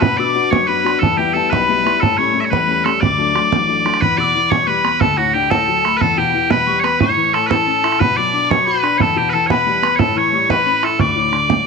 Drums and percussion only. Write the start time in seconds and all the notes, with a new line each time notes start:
0.02 bodhran
0.53 bodhran
0.86 bodhran
1.03 bodhran
1.53 bodhran
1.87 bodhran
2.03 bodhran
2.53 bodhran
2.86 bodhran
3.03 bodhran
3.36 bodhran
3.52 bodhran
3.86 bodhran
3.94 bodhran
4.02 bodhran
4.52 bodhran
4.85 bodhran
5.01 bodhran
5.51 bodhran
5.85 bodhran
6.01 bodhran
6.51 bodhran
6.84 bodhran
7.01 bodhran
7.34 bodhran
7.51 bodhran
7.84 bodhran
7.92 bodhran
8.01 bodhran
8.51 bodhran
8.84 bodhran
9.00 bodhran
9.50 bodhran
9.83 bodhran
9.99 bodhran
10.50 bodhran
10.83 bodhran
10.99 bodhran
11.33 bodhran
11.50 bodhran